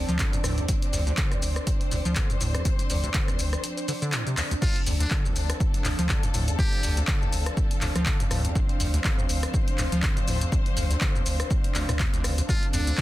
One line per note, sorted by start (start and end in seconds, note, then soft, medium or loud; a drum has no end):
0.00 4.58 F3 medium
0.00 4.58 C4 medium
0.00 4.58 D4 medium
0.00 4.61 D4 medium
0.00 0.67 A4 medium
0.00 4.62 C5 medium
0.00 4.65 D5 medium
0.09 0.22 D2 loud
0.09 0.17 F3 loud
0.09 closed hi-hat soft
0.09 shaker soft
0.19 0.35 D3 medium
0.19 kick loud
0.19 clap loud
0.19 closed hi-hat medium
0.19 shaker soft
0.33 0.39 D2 medium
0.33 closed hi-hat soft
0.33 shaker soft
0.44 0.60 D2 medium
0.44 0.59 A2 medium
0.44 cross-stick medium
0.44 open hi-hat medium
0.44 shaker medium
0.58 0.67 D#2 loud
0.58 closed hi-hat soft
0.58 shaker soft
0.69 0.73 D2 loud
0.69 4.61 C5 medium
0.69 kick loud
0.69 closed hi-hat medium
0.69 shaker soft
0.82 closed hi-hat soft
0.93 1.09 D2 loud
0.93 1.01 F2 medium
0.93 open hi-hat loud
0.93 shaker medium
1.07 1.13 D2 loud
1.07 closed hi-hat soft
1.07 shaker soft
1.17 1.33 D3 medium
1.17 kick loud
1.17 clap loud
1.17 closed hi-hat medium
1.17 shaker soft
1.32 1.40 C2 medium
1.32 cross-stick medium
1.32 closed hi-hat soft
1.32 shaker soft
1.42 1.58 D2 medium
1.42 open hi-hat medium
1.42 shaker medium
1.56 cross-stick medium
1.56 closed hi-hat soft
1.56 shaker soft
1.67 kick loud
1.67 closed hi-hat medium
1.67 shaker soft
1.81 closed hi-hat soft
1.91 2.00 D2 medium
1.91 1.96 A2 medium
1.91 open hi-hat medium
1.91 shaker medium
2.05 2.19 D2 loud
2.05 2.14 F3 loud
2.05 closed hi-hat soft
2.05 shaker soft
2.16 2.31 D3 medium
2.16 kick loud
2.16 clap loud
2.16 closed hi-hat loud
2.16 shaker soft
2.30 2.36 D2 medium
2.30 closed hi-hat soft
2.30 shaker soft
2.41 2.57 D2 medium
2.41 2.56 A2 medium
2.41 open hi-hat medium
2.41 shaker medium
2.55 2.63 D#2 loud
2.55 cross-stick medium
2.55 closed hi-hat soft
2.55 shaker soft
2.65 2.70 D2 loud
2.65 kick loud
2.65 closed hi-hat loud
2.65 shaker soft
2.79 closed hi-hat soft
2.79 shaker soft
2.90 3.06 D2 loud
2.90 2.98 F2 medium
2.90 open hi-hat loud
2.90 shaker medium
3.04 3.10 D2 loud
3.04 closed hi-hat soft
3.04 shaker soft
3.14 3.30 D3 medium
3.14 kick loud
3.14 clap loud
3.14 closed hi-hat loud
3.14 shaker soft
3.28 3.37 C2 medium
3.28 cross-stick medium
3.28 closed hi-hat soft
3.28 shaker soft
3.39 3.55 D2 loud
3.39 open hi-hat medium
3.39 shaker medium
3.53 cross-stick medium
3.53 closed hi-hat soft
3.53 shaker soft
3.64 closed hi-hat loud
3.64 shaker soft
3.77 closed hi-hat soft
3.77 shaker soft
3.88 3.93 D3 medium
3.88 open hi-hat medium
3.88 shaker medium
4.02 4.14 D3 loud
4.02 closed hi-hat soft
4.02 shaker soft
4.12 4.24 A2 medium
4.12 clap loud
4.12 closed hi-hat medium
4.12 shaker soft
4.27 4.36 C3 medium
4.27 closed hi-hat soft
4.27 shaker soft
4.37 4.42 D2 medium
4.37 clap medium
4.37 open hi-hat medium
4.37 shaker medium
4.51 4.55 D2 loud
4.51 closed hi-hat soft
4.51 shaker soft
4.62 4.67 D2 loud
4.62 13.02 F3 medium
4.62 13.02 C4 medium
4.62 13.02 D4 medium
4.62 4.79 F4 medium
4.62 8.54 A4 medium
4.62 kick loud
4.62 crash loud
4.62 shaker soft
4.76 closed hi-hat soft
4.87 5.03 D2 loud
4.87 4.94 F2 medium
4.87 13.02 C5 medium
4.87 open hi-hat loud
4.87 shaker medium
5.00 5.06 D2 loud
5.00 5.15 D4 medium
5.00 closed hi-hat medium
5.00 shaker soft
5.07 12.96 F5 medium
5.07 clap loud
5.11 5.27 D3 medium
5.11 kick loud
5.11 shaker soft
5.25 5.34 C2 medium
5.25 shaker soft
5.36 5.52 D2 loud
5.36 open hi-hat medium
5.36 shaker medium
5.50 cross-stick medium
5.50 closed hi-hat medium
5.50 shaker soft
5.60 kick loud
5.60 shaker soft
5.74 closed hi-hat medium
5.84 5.93 D2 medium
5.84 5.90 A2 medium
5.84 clap medium
5.84 open hi-hat loud
5.84 shaker medium
5.99 6.12 D2 loud
5.99 6.08 F3 loud
5.99 closed hi-hat medium
5.99 shaker soft
6.09 6.25 D3 medium
6.09 kick loud
6.09 clap loud
6.09 shaker soft
6.23 6.29 D2 medium
6.23 closed hi-hat medium
6.23 shaker soft
6.34 6.50 D2 loud
6.34 6.50 A2 medium
6.34 open hi-hat medium
6.34 shaker medium
6.48 6.57 D#2 loud
6.48 closed hi-hat medium
6.48 shaker soft
6.59 6.63 D2 loud
6.59 6.97 G4 medium
6.59 kick loud
6.59 shaker soft
6.73 closed hi-hat soft
6.83 6.99 D2 loud
6.83 6.91 F2 medium
6.83 open hi-hat loud
6.83 shaker medium
6.97 7.03 D2 loud
6.97 closed hi-hat medium
6.97 shaker soft
7.07 7.23 D3 medium
7.07 kick loud
7.07 clap loud
7.07 shaker soft
7.22 7.31 C2 medium
7.22 shaker soft
7.33 7.49 D2 medium
7.33 open hi-hat medium
7.33 shaker medium
7.46 cross-stick medium
7.46 closed hi-hat medium
7.46 shaker soft
7.57 kick loud
7.57 shaker soft
7.71 closed hi-hat medium
7.81 7.90 D2 medium
7.81 7.86 A2 medium
7.81 clap medium
7.81 open hi-hat loud
7.81 shaker medium
7.96 8.09 D2 loud
7.96 8.04 F3 loud
7.96 cross-stick medium
7.96 closed hi-hat medium
7.96 shaker soft
8.06 8.22 D3 medium
8.06 kick loud
8.06 clap loud
8.06 shaker soft
8.20 8.26 D2 loud
8.20 closed hi-hat medium
8.20 shaker soft
8.31 8.47 D2 loud
8.31 8.46 A2 medium
8.31 cross-stick medium
8.31 open hi-hat loud
8.31 shaker medium
8.45 8.54 D#2 loud
8.45 closed hi-hat medium
8.45 shaker soft
8.55 8.60 D2 loud
8.55 12.48 C5 loud
8.55 kick loud
8.55 shaker soft
8.69 closed hi-hat soft
8.80 8.96 D2 loud
8.80 8.88 F2 medium
8.80 open hi-hat loud
8.80 shaker medium
8.94 9.00 D2 loud
8.94 closed hi-hat medium
8.94 shaker soft
9.04 9.20 D3 medium
9.04 kick loud
9.04 clap loud
9.04 shaker soft
9.18 9.27 C2 medium
9.18 shaker soft
9.29 9.45 D2 medium
9.29 open hi-hat loud
9.29 shaker medium
9.43 cross-stick medium
9.43 closed hi-hat medium
9.43 shaker soft
9.54 kick loud
9.54 shaker soft
9.68 closed hi-hat medium
9.78 9.87 D2 medium
9.78 9.83 A2 medium
9.78 clap medium
9.78 open hi-hat loud
9.78 shaker medium
9.92 10.06 D2 loud
9.92 10.01 F3 loud
9.92 closed hi-hat medium
9.92 shaker soft
10.03 10.18 D3 medium
10.03 kick loud
10.03 clap loud
10.03 shaker soft
10.17 10.23 D2 medium
10.17 closed hi-hat soft
10.17 shaker soft
10.28 10.44 D2 loud
10.28 10.43 A2 medium
10.28 open hi-hat medium
10.28 shaker medium
10.41 10.50 D#2 loud
10.41 closed hi-hat medium
10.41 shaker soft
10.52 10.57 D2 loud
10.52 kick loud
10.52 shaker soft
10.66 closed hi-hat soft
10.77 10.93 D2 loud
10.77 10.84 F2 medium
10.77 open hi-hat loud
10.77 shaker medium
10.91 10.97 D2 loud
10.91 closed hi-hat medium
10.91 shaker soft
11.01 11.17 D3 medium
11.01 kick loud
11.01 clap loud
11.01 shaker soft
11.15 11.24 C2 medium
11.15 shaker soft
11.26 11.42 D2 medium
11.26 open hi-hat medium
11.26 shaker medium
11.40 cross-stick medium
11.40 closed hi-hat medium
11.40 shaker soft
11.51 kick loud
11.51 shaker soft
11.64 closed hi-hat soft
11.75 11.87 D2 medium
11.75 11.84 D2 medium
11.75 clap medium
11.75 open hi-hat loud
11.75 shaker medium
11.89 12.03 D2 loud
11.89 11.93 A2 loud
11.89 cross-stick medium
11.89 closed hi-hat medium
11.89 shaker soft
11.99 12.07 D#2 medium
11.99 kick loud
11.99 clap loud
11.99 shaker soft
12.14 12.26 D2 loud
12.14 closed hi-hat soft
12.14 shaker soft
12.24 12.32 D1 medium
12.24 12.40 D2 loud
12.24 cross-stick medium
12.24 open hi-hat loud
12.24 shaker medium
12.38 12.42 D2 loud
12.38 closed hi-hat medium
12.38 shaker soft
12.49 12.54 D2 loud
12.49 12.66 F4 medium
12.49 13.02 A4 medium
12.49 kick loud
12.49 shaker soft
12.63 closed hi-hat soft
12.73 12.90 D2 loud
12.73 12.81 F2 medium
12.73 13.02 D4 medium
12.73 open hi-hat loud
12.73 shaker medium
12.87 12.93 D2 loud
12.87 closed hi-hat medium
12.87 shaker soft
12.94 13.02 G5 medium
12.94 clap loud
12.98 13.02 D3 medium
12.98 kick loud
12.98 shaker soft